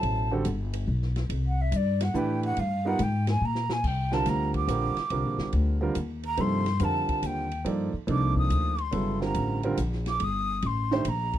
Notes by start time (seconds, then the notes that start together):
Already playing: B2 F#3 E4 A4 C5 A5
0.03 A1, ride
0.31 D3 G3 C4 F#4 A4
0.45 G1, hi-hat pedal, ride
0.73 ride
0.87 B1
1.02 snare
1.16 snare, ride
1.29 C2, ride
1.47 F#5
1.61 E5
1.72 G2, hi-hat pedal, ride
1.76 D5
2.01 F#5, snare, ride
2.14 A2 E3 A3 D4 G4 B4, hi-hat pedal
2.18 G5
2.43 F#5, ride
2.57 G2 F5, ride
2.85 G3 B3 D#4 F4 A#4 F#5
2.99 G#2 G5, hi-hat pedal, ride
3.27 G#5, snare, ride
3.41 A#2 A#5
3.55 snare
3.70 G#5, snare
3.84 C2 G5, kick, crash
4.12 D3 G3 C4 F4 A#4 A5, snare
4.25 D2 A#5, snare, hi-hat pedal, ride
4.54 D6, kick, ride
4.68 A#1 D3 G3 C4 F4 A#4, hi-hat pedal, ride
4.96 muted upright bass stroke, snare, ride
5.10 C2 D3 G3 C4 F4 A#4, ride
5.24 A#1
5.38 G1, snare
5.53 D2, ride
5.81 D3 G3 C4 F4 A#4
5.95 D#2, hi-hat pedal, ride
6.23 A#5, ride
6.37 G2 C3 F3 A#3 D#4 A4 C6, ride
6.66 snare, ride
6.80 F2 D3 G3 C4 F4 A#4, hi-hat pedal, ride
6.84 A5
7.09 muted upright bass stroke, kick, ride
7.22 D#2 G5, hi-hat pedal, ride
7.51 ride
7.65 G2 F3 A#3 D#4 A4 D5, ride
7.93 muted upright bass stroke
8.07 C2 F3 A#3 D4 D#4 A4, ride
8.11 D6
8.36 D#6, kick
8.50 D2, hi-hat pedal, ride
8.78 C6, ride
8.91 G1 C#3 F#3 B3 E4 A4, ride
9.21 D3 G3 C4 F4 A#4 A#5, snare
9.34 A1, hi-hat pedal, ride
9.63 D3 G3 C4 F4 A#4, ride
9.77 A#1, hi-hat pedal, ride
9.92 snare
10.06 D6, snare, ride
10.20 G1 D#6, ride
10.62 A1 C6, ride
10.91 D#3 A3 D4 G4 C5, snare
11.05 A#1 A#5, hi-hat pedal, ride
11.33 kick, ride